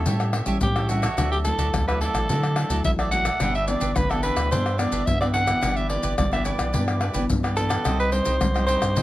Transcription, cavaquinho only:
0.06 0.32 G4 medium
0.06 0.33 A4 medium
0.06 0.33 C#5 medium
0.06 0.34 E5 medium
0.33 0.45 G4 soft
0.33 0.46 A4 soft
0.33 0.46 C#5 medium
0.33 0.47 E5 medium
0.47 0.56 G4 medium
0.47 0.56 A4 medium
0.47 0.57 C#5 medium
0.47 0.57 E5 medium
0.76 0.88 A4 soft
0.76 0.89 C#5 soft
0.76 0.89 E5 soft
0.88 1.02 G4 soft
0.88 1.02 A4 medium
0.88 1.02 C#5 medium
0.88 1.01 E5 medium
1.02 1.16 A4 medium
1.02 1.16 C#5 medium
1.02 1.16 E5 medium
1.17 1.43 F#4 medium
1.17 1.44 A4 medium
1.17 1.44 D5 medium
1.17 1.45 E5 medium
1.44 1.57 F#4 soft
1.44 1.58 A4 medium
1.44 1.58 D5 soft
1.44 1.58 E5 medium
1.58 1.68 F#4 medium
1.58 1.68 A4 medium
1.58 1.68 D5 medium
1.58 1.68 E5 medium
1.88 2.00 A4 soft
1.88 2.01 D5 soft
1.88 2.00 E5 soft
2.01 2.14 F#4 medium
2.01 2.14 A4 medium
2.01 2.14 D5 medium
2.01 2.13 E5 medium
2.14 2.28 A4 soft
2.14 2.28 D5 soft
2.14 2.27 E5 medium
2.30 2.55 F#4 medium
2.30 2.56 A4 medium
2.30 2.57 D5 medium
2.30 2.57 E5 medium
2.56 2.69 F#4 soft
2.56 2.70 A4 soft
2.56 2.70 D5 soft
2.56 2.70 E5 medium
2.70 2.79 F#4 medium
2.70 2.80 A4 medium
2.70 2.80 D5 medium
2.70 2.80 E5 medium
2.99 3.12 A4 soft
2.99 3.12 D5 soft
2.99 3.12 E5 soft
3.12 3.25 F#4 soft
3.12 3.25 A4 soft
3.12 3.25 D5 soft
3.12 3.24 E5 medium
3.25 3.39 A4 medium
3.25 3.39 D5 medium
3.25 3.38 E5 medium
3.40 3.66 D4 medium
3.40 3.66 G4 medium
3.40 3.67 B4 medium
3.40 3.67 E5 medium
3.67 3.79 D4 soft
3.67 3.79 G4 soft
3.67 3.80 B4 soft
3.67 3.80 E5 soft
3.80 3.90 D4 medium
3.80 3.90 G4 medium
3.80 3.91 B4 medium
3.80 3.91 E5 medium
4.09 4.22 G4 soft
4.09 4.23 B4 soft
4.09 4.22 E5 soft
4.23 4.36 D4 medium
4.23 4.36 G4 medium
4.23 4.35 B4 medium
4.23 4.35 E5 medium
4.36 4.50 G4 soft
4.36 4.50 B4 soft
4.36 4.49 E5 soft
4.51 4.77 D4 medium
4.51 4.78 G4 medium
4.51 4.78 B4 medium
4.51 4.79 E5 medium
4.78 4.90 D4 soft
4.78 4.90 G4 soft
4.78 4.91 B4 medium
4.78 4.91 E5 soft
4.92 5.01 D4 medium
4.92 5.01 G4 medium
4.92 5.02 B4 medium
4.92 5.02 E5 medium
5.21 5.33 G4 soft
5.21 5.33 B4 soft
5.21 5.34 E5 medium
5.33 5.47 D4 medium
5.33 5.47 G4 medium
5.33 5.46 B4 medium
5.33 5.45 E5 medium
5.47 5.61 G4 medium
5.47 5.61 B4 medium
5.47 5.61 E5 medium
5.61 5.88 E4 medium
5.61 5.89 G4 medium
5.61 5.90 B4 medium
5.61 5.90 D5 medium
5.89 6.01 E4 soft
5.89 6.02 G4 soft
5.89 6.02 B4 soft
5.89 6.02 D5 soft
6.02 6.12 E4 medium
6.02 6.13 G4 medium
6.02 6.13 B4 medium
6.02 6.13 D5 medium
6.32 6.44 G4 soft
6.32 6.45 B4 soft
6.32 6.45 D5 medium
6.44 6.58 E4 medium
6.44 6.59 G4 medium
6.44 6.58 B4 medium
6.44 6.57 D5 medium
6.58 6.72 G4 soft
6.58 6.72 B4 soft
6.58 6.72 D5 soft
6.73 6.99 E4 medium
6.73 7.00 G4 medium
6.73 7.01 B4 medium
6.73 7.01 D5 medium
7.00 7.12 E4 soft
7.00 7.13 G4 medium
7.00 7.13 B4 medium
7.00 7.14 D5 medium
7.13 7.24 E4 medium
7.13 7.24 G4 medium
7.13 7.24 B4 medium
7.13 7.24 D5 medium
7.43 7.55 G4 soft
7.43 7.56 B4 soft
7.43 7.56 D5 soft
7.56 7.69 E4 medium
7.56 7.70 G4 medium
7.56 7.69 B4 medium
7.56 7.68 D5 medium
7.69 7.84 G4 medium
7.69 7.84 B4 medium
7.69 7.83 D5 medium
7.84 8.10 D#4 medium
7.84 8.11 G4 medium
7.84 8.12 C5 medium
7.84 8.12 D#5 medium
8.11 8.24 D#4 soft
8.11 8.24 G4 soft
8.11 8.24 C5 medium
8.11 8.24 D#5 soft
8.25 8.35 D#4 medium
8.25 8.35 G4 medium
8.25 8.35 C5 medium
8.25 8.35 D#5 medium
8.54 8.66 G4 soft
8.54 8.67 C5 soft
8.54 8.68 D#5 medium
8.67 8.81 D#4 medium
8.67 8.81 G4 medium
8.67 8.80 C5 medium
8.67 8.79 D#5 medium
8.80 8.95 G4 soft
8.80 8.95 C5 soft
8.80 8.95 D#5 soft
8.95 9.02 D#4 medium
8.95 9.02 G4 medium
8.95 9.02 C5 medium
8.95 9.02 D#5 medium

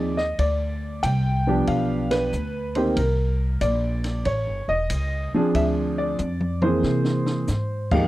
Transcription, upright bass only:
0.00 0.37 D#2 medium
0.38 1.01 D2 medium
1.03 1.66 C2 medium
1.68 2.31 B1 medium
2.33 2.95 D2 medium
2.96 3.59 C2 medium
3.61 4.24 A#1 loud
4.25 4.46 A1 medium
4.46 4.67 G1 medium
4.68 4.89 E1 medium
4.90 5.31 C#2 medium
5.33 muted upright bass stroke soft
5.54 6.17 D2 medium
6.19 6.82 F2 medium
6.83 7.46 C3 medium
7.48 8.08 G#2 medium

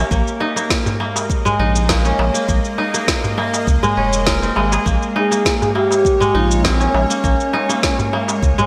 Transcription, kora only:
0.00 0.16 G#3 medium
0.00 0.11 A#3 medium
0.00 1.41 C#4 medium
0.00 0.40 D#4 loud
0.11 0.56 A#3 medium
0.41 1.59 D#4 loud
0.56 1.00 A#3 medium
1.00 1.89 A#3 medium
1.45 3.79 G#3 medium
1.59 2.78 D#4 loud
1.89 2.34 A#3 medium
2.05 3.79 C#4 medium
2.34 2.48 A#3 medium
2.49 2.94 A#3 medium
2.78 4.40 D#4 medium
2.94 3.37 A#3 medium
3.38 4.85 A#3 medium
3.83 4.55 G#3 medium
3.97 4.48 C#4 medium
4.27 5.54 A#4 medium
4.42 6.22 C4 medium
4.56 4.91 G#3 medium
4.72 6.09 G#4 medium
4.86 5.31 A#3 medium
5.16 6.34 D#4 medium
5.31 5.75 A#3 medium
5.75 6.64 A#3 medium
6.20 8.54 G#3 medium
6.35 7.53 D#4 loud
6.64 7.09 A#3 medium
6.80 8.54 C#4 medium
7.10 7.23 A#3 medium
7.24 7.69 A#3 medium
7.54 8.66 D#4 medium
7.69 8.13 A#3 medium
8.13 8.66 A#3 medium
8.58 8.66 G#3 medium

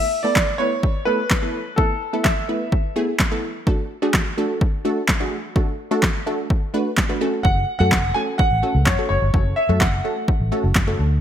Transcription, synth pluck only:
0.24 0.41 A3 medium
0.24 0.41 B3 medium
0.24 0.41 E4 medium
0.24 0.41 A4 medium
0.60 0.82 A3 medium
0.60 0.82 B3 medium
0.60 0.82 E4 medium
0.60 0.82 B4 medium
1.07 1.23 A3 medium
1.07 1.23 B3 medium
1.07 1.24 E4 medium
1.07 1.24 A4 medium
1.42 1.59 A3 medium
1.42 1.59 B3 medium
1.42 1.59 E4 medium
1.42 1.59 A4 medium
1.78 1.94 A3 medium
1.78 1.94 B3 medium
1.78 1.94 E4 medium
1.78 1.94 A4 medium
2.13 2.30 A3 medium
2.13 2.30 B3 medium
2.13 2.30 E4 medium
2.13 2.30 A4 medium
2.49 2.71 A3 medium
2.49 2.71 B3 medium
2.49 2.71 E4 medium
2.49 2.71 B4 medium
2.96 3.12 A3 medium
2.96 3.12 B3 medium
2.96 3.12 E4 medium
2.96 3.13 G#4 loud
3.31 3.48 A3 medium
3.31 3.48 B3 medium
3.31 3.48 E4 medium
3.31 3.48 A4 loud
3.67 3.83 A3 medium
3.67 3.83 D4 medium
3.67 3.83 F#4 medium
3.67 3.83 A4 loud
4.02 4.19 A3 medium
4.02 4.19 D4 medium
4.02 4.19 F#4 medium
4.02 4.19 G#4 loud
4.38 4.60 A3 medium
4.38 4.60 D4 medium
4.38 4.60 F#4 medium
4.38 4.60 A4 loud
4.85 5.01 A3 medium
4.85 5.01 D4 medium
4.85 5.01 F#4 medium
4.85 5.02 A4 loud
5.20 5.37 A3 medium
5.20 5.37 D4 medium
5.20 5.37 F#4 medium
5.20 5.37 G#4 medium
5.56 5.72 A3 medium
5.56 5.72 D4 medium
5.56 5.72 F#4 medium
5.56 5.72 A4 medium
5.91 6.08 A3 medium
5.91 6.08 D4 medium
5.91 6.08 F#4 medium
5.91 6.08 A4 loud
6.26 6.48 A3 medium
6.26 6.49 D4 medium
6.26 6.49 F#4 medium
6.26 6.49 A4 loud
6.74 6.90 A3 medium
6.74 6.90 D4 medium
6.74 6.90 F#4 medium
6.74 6.91 B4 loud
7.09 7.20 A3 medium
7.09 7.21 D4 medium
7.09 7.20 F#4 medium
7.09 7.21 B4 medium
7.21 7.68 A3 loud
7.21 7.68 C#4 medium
7.21 7.68 F#4 medium
7.21 7.69 A4 loud
7.80 7.97 A3 medium
7.80 7.97 C#4 medium
7.80 7.97 F#4 medium
7.80 7.97 A4 medium
8.15 8.37 A3 medium
8.15 8.38 C#4 medium
8.15 8.38 F#4 medium
8.15 8.38 A4 medium
8.63 8.79 A3 medium
8.63 8.79 C#4 medium
8.63 8.79 F#4 medium
8.63 8.79 A4 medium
8.98 9.15 A3 medium
8.98 9.15 C#4 medium
8.98 9.15 F#4 medium
8.98 9.15 A4 medium
9.33 9.50 A3 medium
9.33 9.50 C#4 medium
9.33 9.50 F#4 medium
9.33 9.50 A4 medium
9.69 9.85 A3 medium
9.69 9.86 C#4 medium
9.69 9.86 F#4 medium
9.69 9.86 A4 medium
10.04 10.26 A3 medium
10.04 10.27 C#4 medium
10.04 10.27 F#4 medium
10.04 10.27 A4 medium
10.52 10.68 A3 medium
10.52 10.68 C#4 medium
10.52 10.68 F#4 medium
10.52 10.68 A4 medium
10.87 11.04 A3 medium
10.87 11.04 C#4 medium
10.87 11.04 F#4 medium
10.87 11.04 A4 loud

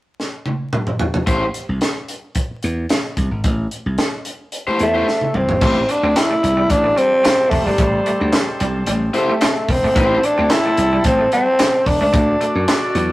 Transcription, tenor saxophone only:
4.83 5.38 A3 loud
5.37 5.92 C4 medium
5.90 6.19 D4 loud
6.17 6.72 E4 loud
6.70 6.99 D4 loud
6.98 7.52 C4 loud
7.50 7.67 A3 medium
7.65 8.47 G3 medium
9.17 9.72 A3 medium
9.71 10.26 C4 loud
10.25 10.53 D4 loud
10.51 11.05 E4 loud
11.06 11.30 C4 loud
11.33 11.88 C4 loud
11.86 12.01 D4 medium
12.01 12.78 D4 medium

